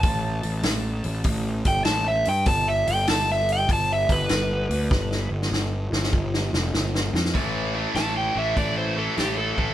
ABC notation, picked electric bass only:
X:1
M:4/4
L:1/8
Q:"Swing" 1/4=98
K:Gmix
V:1 name="Picked electric bass" clef=bass
A,,, A,,, A,,, A,,, A,,, G,,, A,,, G,, | G,,, G,,, G,,,2 G,,, G,,, G,,, D,, | G,,, G,,, G,,, G,,, G,,, F,,, G,,, F,, | A,,,2 A,,, A,,, A,,,2 A,,, A,,, |]